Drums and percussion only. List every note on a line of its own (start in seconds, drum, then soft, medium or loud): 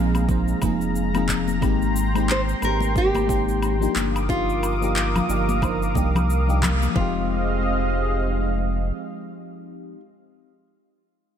0.15 high conga loud
0.15 cabasa soft
0.15 low woodblock medium
0.29 kick loud
0.29 cabasa soft
0.48 cabasa soft
0.62 kick medium
0.62 high conga medium
0.62 cabasa medium
0.62 low woodblock medium
0.81 cabasa soft
0.96 cabasa soft
1.14 high conga medium
1.14 cabasa soft
1.14 low woodblock medium
1.29 kick medium
1.29 clap medium
1.29 cabasa medium
1.48 high conga medium
1.48 cabasa soft
1.62 kick loud
1.62 cabasa soft
1.62 low woodblock medium
1.82 cabasa soft
1.96 cabasa medium
2.15 cabasa soft
2.15 low woodblock medium
2.29 clap medium
2.29 cabasa soft
2.49 cabasa soft
2.62 cabasa medium
2.62 low woodblock medium
2.81 high conga medium
2.81 cabasa soft
2.96 kick loud
2.96 cabasa soft
3.15 high conga medium
3.15 cabasa soft
3.15 low woodblock medium
3.29 kick medium
3.29 cabasa medium
3.49 cabasa soft
3.62 cabasa soft
3.62 low woodblock medium
3.82 cabasa soft
3.96 clap medium
3.96 high conga medium
3.96 cabasa medium
4.16 cabasa soft
4.16 low woodblock medium
4.29 kick loud
4.29 cabasa soft
4.50 cabasa soft
4.63 cabasa medium
4.63 low woodblock medium
4.83 cabasa soft
4.96 clap medium
4.96 cabasa soft
5.16 low conga medium
5.16 cabasa soft
5.16 low woodblock medium
5.30 cabasa medium
5.49 high conga medium
5.49 cabasa soft
5.62 kick loud
5.62 cabasa soft
5.62 low woodblock medium
5.83 cabasa soft
5.95 kick medium
5.95 high conga medium
5.95 cabasa medium
6.15 low conga medium
6.15 cabasa soft
6.15 low woodblock medium
6.30 cabasa soft
6.50 high conga medium
6.50 cabasa soft
6.62 kick medium
6.62 clap medium
6.62 low conga medium
6.62 cabasa medium
6.62 low woodblock medium
6.82 high conga medium
6.82 cabasa soft
6.96 kick loud